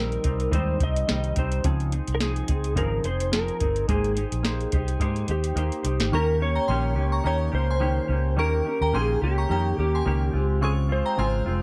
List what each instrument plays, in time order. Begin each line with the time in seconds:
Already playing: fingered electric bass A#1, clean electric guitar D#3 G3 C4, electric slide guitar A#4
0.00 clean electric guitar D#4
0.12 closed hi-hat
0.24 fingered electric bass C2, clean electric guitar G3 C4 D#4, kick, closed hi-hat
0.40 closed hi-hat
0.51 fingered electric bass D#2, clean electric guitar G#2 D#3 G3 C4 D#4, electric slide guitar C5, kick, closed hi-hat
0.80 fingered electric bass C2, clean electric guitar G3 C4 D#4, electric slide guitar D#5, kick, closed hi-hat
0.96 closed hi-hat
1.07 fingered electric bass C2, clean electric guitar D#3 G3 C4 D#4, snare, closed hi-hat
1.24 closed hi-hat
1.36 fingered electric bass C2, clean electric guitar G3 C4 D#4, electric slide guitar C5, kick, closed hi-hat
1.52 closed hi-hat
1.64 fingered electric bass C#2, clean electric guitar C#3 F3 C4 D#4 G#4, kick, closed hi-hat
1.80 closed hi-hat
1.92 clean electric guitar C4 D#4 G#4, closed hi-hat
2.08 fingered electric bass C2, closed hi-hat
2.15 electric slide guitar A#4
2.20 clean electric guitar F3 C4 D#4 G#4, electric slide guitar G#4, snare, closed hi-hat
2.36 closed hi-hat
2.48 fingered electric bass C#2, clean electric guitar C4 D#4 G#4, kick, closed hi-hat
2.64 closed hi-hat
2.75 fingered electric bass G#1, clean electric guitar C#3 F3 C4 D#4 G#4, electric slide guitar A#4, kick, closed hi-hat
3.04 fingered electric bass F1, clean electric guitar C4 D#4 G#4, electric slide guitar C5, closed hi-hat
3.20 closed hi-hat
3.32 clean electric guitar F3 C4 D#4 G#4, electric slide guitar A#4, snare, closed hi-hat
3.48 closed hi-hat
3.60 fingered electric bass G1, clean electric guitar C4 D#4 G#4, kick, closed hi-hat
3.76 closed hi-hat
3.88 fingered electric bass G#1, clean electric guitar G#3 A#3 D#4 G4 C5, electric slide guitar G#4, kick, closed hi-hat
4.04 closed hi-hat
4.15 clean electric guitar D#4 G4 C5, closed hi-hat
4.32 fingered electric bass A#1, closed hi-hat
4.43 clean electric guitar A#3 D#4 G4 C5, snare, closed hi-hat
4.61 closed hi-hat
4.72 fingered electric bass C2, clean electric guitar D#4 G4 C5, kick, closed hi-hat
4.88 closed hi-hat
5.00 fingered electric bass G#2, clean electric guitar G#3 A#3 D#4 G4 C5, kick, closed hi-hat
5.16 closed hi-hat
5.28 fingered electric bass D#2, clean electric guitar D#4 G4 C5, electric slide guitar G4, closed hi-hat
5.44 closed hi-hat
5.56 fingered electric bass D#2, clean electric guitar A#3 D#4 G4 C5, closed hi-hat
5.72 closed hi-hat
5.83 fingered electric bass C2, clean electric guitar D#4 G4 C5, closed hi-hat
6.00 fingered electric bass G#1, snare, closed hi-hat
6.12 fingered electric bass D#2, clean electric guitar D#3 A#3 C#4 G4, electric slide guitar A#4, synth bell A#5 C#6
6.40 clean electric guitar A#3 C#4 G4, electric slide guitar C#5
6.55 synth bell G5 A#5
6.68 fingered electric bass A#1, clean electric guitar D#3 A#3 C#4 G4, synth bell G5 C6
6.96 fingered electric bass C#2, clean electric guitar A#3 C#4 G4
7.12 synth bell A#5 C#6
7.24 fingered electric bass D#2, clean electric guitar D#3 A#3 C#4 G4, electric slide guitar C#5, synth bell G5 A#5
7.52 fingered electric bass C#2, clean electric guitar A#3 C#4 G4, electric slide guitar C5
7.71 synth bell G#5 C6
7.80 clean electric guitar D#3 A#3 C#4 G4
8.08 fingered electric bass C#2, clean electric guitar A#3 C#4 G4
8.37 fingered electric bass D#2, clean electric guitar D#3 A#3 C#4 G4, electric slide guitar A#4, synth bell A#5 C#6
8.64 clean electric guitar A#3 C#4 G4
8.81 fingered electric bass D#2, synth bell G5 A#5
8.93 fingered electric bass A#1, clean electric guitar D#3 A#3 C#4 G4, electric slide guitar G#4, synth bell G5 C6
9.22 fingered electric bass C#2, clean electric guitar A#3 C#4 G4, electric slide guitar G4
9.38 synth bell A#5 C#6
9.49 fingered electric bass F2, clean electric guitar D#3 A#3 C#4 G4, synth bell G5 A#5
9.77 fingered electric bass D#2, clean electric guitar A#3 C#4 G4, electric slide guitar G4
9.95 synth bell G#5 C6
10.05 fingered electric bass C#2, clean electric guitar D#3 A#3 C#4 G4
10.33 fingered electric bass C#2, clean electric guitar G#3 C4 F4
10.61 clean electric guitar C#3 G#3 C4 F4, electric slide guitar G#4, synth bell G#5 C#6
10.89 clean electric guitar G#3 C4 F4, electric slide guitar C5
11.06 synth bell G5 A#5
11.17 fingered electric bass G#1, clean electric guitar C#3 G#3 C4 F4, synth bell G#5 C6
11.46 fingered electric bass F1, clean electric guitar G#3 C4 F4